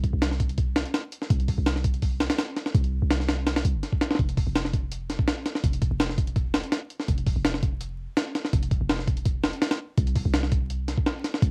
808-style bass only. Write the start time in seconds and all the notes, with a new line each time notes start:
Already playing: C2
0.13 C2
1.30 C2
1.58 C2
2.75 C2
3.02 C2
3.65 C2
3.74 G1
4.19 F1
4.47 F1
5.64 F1
5.91 F1
7.08 F1
7.36 F1
8.53 F1
8.81 F1
9.98 C2
10.25 C2
11.42 C2